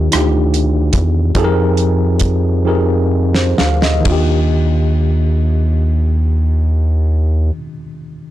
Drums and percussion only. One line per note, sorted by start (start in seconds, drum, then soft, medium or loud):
0.12 cross-stick medium
0.12 closed hi-hat medium
0.54 closed hi-hat soft
0.93 kick medium
0.93 closed hi-hat medium
1.35 kick medium
1.35 closed hi-hat soft
1.77 closed hi-hat soft
2.19 kick medium
2.19 closed hi-hat medium
3.35 snare medium
3.58 snare medium
3.82 snare medium
4.05 kick medium
4.05 ride medium